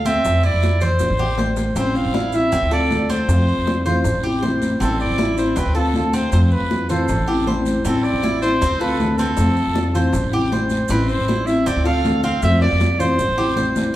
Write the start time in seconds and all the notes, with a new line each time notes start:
Already playing: D2
0.05 C4 E5, high bongo, high conga, short guiro, maracas
0.25 F2, high bongo, high conga, long guiro, maracas
0.43 E4 D5, high conga, maracas
0.54 F2
0.62 high bongo, high conga, short guiro, maracas
0.81 C5, high bongo, high conga, low conga, short guiro, maracas
0.99 A1, high bongo, high conga, long guiro, maracas
1.10 A1
1.18 G4, low bongo, high conga, maracas
1.38 C5, low bongo, high conga, short guiro, maracas
1.57 low bongo, high conga, short guiro, maracas
1.75 A1 E3 G3 C4 C5, high bongo, long guiro, maracas
1.95 F5, high conga, maracas
2.05 A1
2.14 E4, high bongo, high conga, short guiro, maracas
2.33 G3 C4 E4 E5, high bongo, high conga, short guiro, maracas
2.52 D2 C4, muted nylon-string guitar stroke, high bongo, high conga, long guiro, maracas
2.62 D2
2.71 A3 C4 F4 A4 D5, high bongo, high conga, maracas
2.90 D3 A3 C4 F4, high bongo, low bongo, high conga, short guiro, maracas
3.10 C4 C5, high bongo, high conga, short guiro, maracas
3.28 F2 C3 A3 C4 F4, high bongo, long guiro, maracas
3.48 maracas
3.58 F2
3.67 high bongo, high conga, short guiro, maracas
3.86 E3 A3 C4 F4 C5, high bongo, high conga, low conga, short guiro, maracas
4.04 A1, muted nylon-string guitar stroke, high bongo, high conga, long guiro, maracas
4.14 A1
4.24 G3 C4 E4 G4, high bongo, high conga, maracas
4.42 E3 G3 C4 E4 C5, high bongo, low bongo, high conga, short guiro, maracas
4.62 high bongo, high conga, short guiro, maracas
4.80 A1 E3 G3 C4 E4 A4, high bongo, high conga, long guiro, maracas
5.00 D5, high conga, maracas
5.10 A1
5.18 E4, high bongo, high conga, short guiro, maracas
5.37 G3 C4 E4 C5, high bongo, high conga, short guiro, maracas
5.56 D2 C4 B4, muted nylon-string guitar stroke, high bongo, high conga, long guiro, maracas
5.66 D2
5.75 A3 C4 F4 A4, high bongo, high conga, maracas
5.93 D3 A3 C4 F4, high bongo, low bongo, high conga, short guiro, maracas
6.13 C4 C5, high bongo, high conga, short guiro, maracas
6.32 F2 C3 A3 C4 F4 C5, high bongo, high conga, long guiro, maracas
6.51 B4, high conga, maracas
6.61 F2
6.70 high bongo, high conga, short guiro, maracas
6.89 E3 A3 C4 F4 A4 C5, high bongo, high conga, low conga, short guiro, maracas
7.08 A1, muted nylon-string guitar stroke, high bongo, high conga, low conga, long guiro, maracas
7.18 A1
7.28 G3 C4 E4 G4, high bongo, high conga, maracas
7.46 E3 G3 C4 E4 C5, high bongo, low bongo, high conga, short guiro, maracas
7.66 high bongo, high conga, short guiro, maracas
7.84 A1 E3 G3 C4 E4 A4, high bongo, high conga, long guiro, maracas
8.04 D5, high conga, maracas
8.13 A1
8.22 E4, high bongo, high conga, short guiro, maracas
8.42 G3 C4 E4 C5, high bongo, high conga, short guiro, maracas
8.61 D2 C4, muted nylon-string guitar stroke, high bongo, long guiro, maracas
8.71 D2
8.80 A3 C4 F4 A4 B4, high bongo, high conga, maracas
8.99 D3 A3 C4 F4, high bongo, low bongo, high conga, short guiro, maracas
9.18 C4 A4, high bongo, high conga, short guiro, maracas
9.37 F2 C3 A3 C4 F4, high bongo, high conga, long guiro, maracas
9.56 high conga, maracas
9.66 F2
9.75 high bongo, high conga, short guiro, maracas
9.94 E3 A3 C4 F4 C5, high conga, low conga, short guiro, maracas
10.13 A1, muted nylon-string guitar stroke, high bongo, high conga, long guiro, maracas
10.23 A1
10.31 G3 C4 E4 G4, high bongo, high conga, maracas
10.50 E3 G3 C4 E4 C5, high bongo, low bongo, high conga, short guiro, maracas
10.70 high bongo, high conga, short guiro, maracas
10.88 A1 E3 G3 C4 E4 B4, high bongo, high conga, long guiro, maracas
11.08 C5, high conga, maracas
11.19 A1
11.28 E4, high bongo, high conga, short guiro, maracas
11.46 G3 C4 E4 E5, high bongo, high conga, short guiro, maracas
11.66 D2 C4 D5, muted nylon-string guitar stroke, high bongo, high conga, long guiro, maracas
11.76 D2
11.84 A3 C4 F4 A4 F5, high bongo, high conga, maracas
12.03 D3 A3 C4 F4, high bongo, low bongo, high conga, short guiro, maracas
12.23 C4 F5, high bongo, high conga, short guiro, maracas
12.41 F2 C3 A3 C4 F4 E5, high bongo, long guiro, maracas
12.61 D5, high bongo, high conga, maracas
12.72 F2
12.80 high bongo, high conga, short guiro, maracas
12.99 E3 A3 C4 F4 C5, high conga, low conga, short guiro, maracas
13.18 A1, muted nylon-string guitar stroke, low bongo, long guiro, maracas
13.29 A1
13.37 G3 C4 E4 G4, high conga, maracas
13.55 E3 G3 C4 E4 C5, low bongo, high conga, short guiro, maracas
13.76 low bongo, high conga, short guiro, maracas